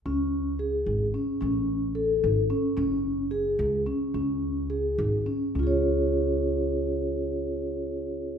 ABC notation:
X:1
M:5/8
L:1/8
Q:1/4=108
K:Db
V:1 name="Vibraphone"
D2 A2 D | ^C2 =A2 C | D2 A2 D | D2 A2 D |
[DFAd]4- [DFAd]- | [DFAd]4- [DFAd] |]
V:2 name="Upright bass" clef=bass
D,,3 A,,, z | =A,,,3 _A,,, z | G,,,3 D,, z | D,,3 A,,, z |
D,,4- D,,- | D,,4- D,, |]